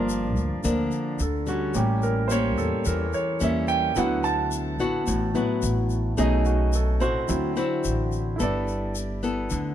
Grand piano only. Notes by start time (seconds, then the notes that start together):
Already playing: A#3 F4 D5
1.22 A4
1.48 F#4
1.74 G3 A#3 C#4 G4
2.03 A#4
2.28 C5 C#5
2.58 A4
2.87 A#4
3.14 C#5
3.43 E5
3.68 G5
3.95 F#3 B3 E4 F#5
4.24 A5
5.34 F#3 B3 E4
6.17 A3 C#4 D#4 D#5
6.45 F#4
6.75 A4
7.01 C5
7.28 F#3 C4 E4
8.36 E4 A4
8.40 B4 D5